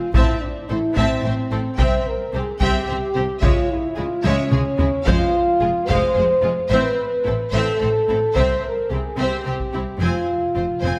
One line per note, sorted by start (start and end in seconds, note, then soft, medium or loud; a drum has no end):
0.00 0.15 F4 medium
0.14 0.23 A1 medium
0.14 0.24 A2 medium
0.14 0.40 C4 medium
0.14 0.41 E4 medium
0.14 0.40 E5 soft
0.14 0.40 A5 soft
0.14 taiko medium
0.40 0.68 D4 medium
0.69 0.78 A1 soft
0.69 0.79 A2 soft
0.69 0.78 C4 soft
0.69 0.96 E4 medium
0.69 0.77 A4 soft
0.69 0.78 C5 soft
0.96 1.06 A1 medium
0.96 1.05 A2 medium
0.96 1.78 C4 medium
0.96 1.22 C4 medium
0.96 1.22 E5 medium
0.96 1.22 A5 medium
0.96 taiko medium
1.24 1.32 A1 soft
1.24 1.33 A2 soft
1.24 1.32 C4 soft
1.24 1.33 C5 soft
1.24 1.32 E5 soft
1.51 1.61 A1 soft
1.51 1.59 A2 soft
1.51 1.60 C4 soft
1.51 1.60 A4 soft
1.51 1.59 C5 soft
1.77 1.88 C2 medium
1.77 1.86 C3 medium
1.77 2.04 C4 medium
1.77 2.06 C5 medium
1.77 2.05 E5 medium
1.77 2.03 G5 soft
1.77 taiko medium
2.08 2.34 A#4 medium
2.33 2.42 C2 soft
2.33 2.41 C3 soft
2.33 2.44 C4 soft
2.33 2.44 G4 soft
2.33 2.61 G#4 medium
2.33 2.41 C5 soft
2.60 2.69 C2 medium
2.60 2.69 C3 medium
2.60 2.87 C4 medium
2.60 3.42 G4 medium
2.60 2.87 E5 medium
2.60 2.86 G5 medium
2.60 taiko medium
2.87 2.98 C2 soft
2.87 2.97 C3 soft
2.87 2.98 C4 soft
2.87 2.97 C5 soft
2.87 2.95 E5 soft
3.14 3.26 C2 soft
3.14 3.23 C3 soft
3.14 3.24 C4 soft
3.14 3.24 G4 soft
3.14 3.22 C5 soft
3.40 3.52 C#2 medium
3.40 3.50 C#3 medium
3.40 3.69 G#3 medium
3.40 3.69 F4 medium
3.40 3.68 C#5 medium
3.40 3.67 E5 soft
3.40 taiko medium
3.69 3.97 E4 medium
3.95 4.06 C#2 soft
3.95 4.05 C#3 soft
3.95 4.05 G#3 soft
3.95 4.06 E4 soft
3.95 4.25 F4 medium
3.95 4.03 G#4 soft
4.23 4.33 C#2 medium
4.23 4.32 C#3 medium
4.23 4.50 G#3 medium
4.23 5.07 C#4 medium
4.23 4.51 C#5 medium
4.23 4.49 E5 medium
4.23 taiko high medium
4.50 4.61 C#2 soft
4.50 4.60 C#3 soft
4.50 4.59 G#3 soft
4.50 4.61 G#4 soft
4.50 4.58 C#5 soft
4.50 taiko mid medium
4.78 4.88 C#2 soft
4.78 4.87 C#3 soft
4.78 4.86 G#3 soft
4.78 4.87 E4 soft
4.78 4.86 G#4 soft
4.78 taiko low medium
5.04 5.15 F2 medium
5.04 5.32 G#3 medium
5.04 5.87 F4 medium
5.04 5.33 C5 medium
5.04 5.31 F5 medium
5.04 taiko medium
5.08 5.16 F1 medium
5.60 5.69 F1 soft
5.60 5.69 F2 soft
5.60 5.70 G#3 soft
5.60 5.70 F4 soft
5.60 5.68 G#4 soft
5.87 5.98 F1 medium
5.87 5.96 F2 medium
5.87 6.15 G#3 medium
5.87 6.53 C5 medium
5.87 6.14 C5 medium
5.87 6.14 F5 medium
5.87 taiko medium
6.14 6.23 F1 soft
6.14 6.24 F2 soft
6.14 6.22 G#4 soft
6.14 6.24 C5 soft
6.18 6.26 G#3 soft
6.42 6.51 F1 soft
6.42 6.50 F2 soft
6.42 6.52 G#3 soft
6.42 6.50 F4 soft
6.42 6.52 G#4 soft
6.69 6.78 A1 medium
6.69 6.78 A2 medium
6.69 6.97 C4 medium
6.69 7.51 B4 medium
6.69 6.96 C5 medium
6.69 6.96 E5 medium
7.24 7.34 A1 soft
7.24 7.33 A2 soft
7.24 7.35 C4 soft
7.24 7.32 E4 soft
7.24 7.34 A4 soft
7.51 7.62 A1 medium
7.51 7.61 A2 medium
7.51 7.80 C4 medium
7.51 8.34 A4 medium
7.51 7.78 C5 medium
7.51 7.79 E5 medium
7.79 7.89 A1 soft
7.79 7.89 A2 soft
7.79 7.90 C4 soft
7.79 7.87 A4 soft
7.79 7.89 C5 soft
8.08 8.18 A1 soft
8.08 8.16 A2 soft
8.08 8.18 C4 medium
8.08 8.16 E4 soft
8.08 8.18 A4 soft
8.34 8.44 C2 medium
8.34 8.44 C3 medium
8.34 8.62 C4 medium
8.34 8.60 C5 medium
8.34 8.64 C5 medium
8.34 8.61 E5 soft
8.34 taiko medium
8.64 8.91 A#4 medium
8.90 9.00 C2 soft
8.90 8.99 C3 soft
8.90 9.01 C4 soft
8.90 8.99 E4 soft
8.90 8.98 G4 soft
8.90 9.18 G#4 medium
9.17 9.26 C2 medium
9.17 9.25 C3 soft
9.17 9.44 C4 medium
9.17 10.00 G4 medium
9.17 9.43 C5 medium
9.17 9.43 E5 soft
9.45 9.55 C2 soft
9.45 9.53 C3 soft
9.45 9.55 C4 soft
9.45 9.54 G4 soft
9.45 9.53 C5 soft
9.60 taiko soft
9.73 9.82 C2 soft
9.73 9.81 C3 soft
9.73 9.83 C4 soft
9.73 9.82 E4 soft
9.73 9.81 G4 soft
9.99 10.09 F1 medium
9.99 10.07 F2 medium
9.99 10.27 C4 soft
9.99 10.99 F4 medium
9.99 10.26 C5 soft
9.99 10.26 G#5 soft
10.23 10.28 F2 soft
10.30 10.36 F2 soft
10.37 10.44 F2 soft
10.45 10.51 F2 soft
10.55 10.64 F1 soft
10.55 10.63 F2 soft
10.55 10.64 C4 soft
10.55 10.65 F4 soft
10.55 10.64 C5 soft
10.60 10.67 F2 soft
10.68 10.75 F2 soft
10.76 10.82 F2 soft
10.81 10.92 F1 soft
10.81 10.90 F2 soft
10.81 10.89 F2 soft
10.81 10.99 C4 soft
10.81 10.99 C5 soft
10.81 10.99 G#5 soft
10.90 10.97 F2 soft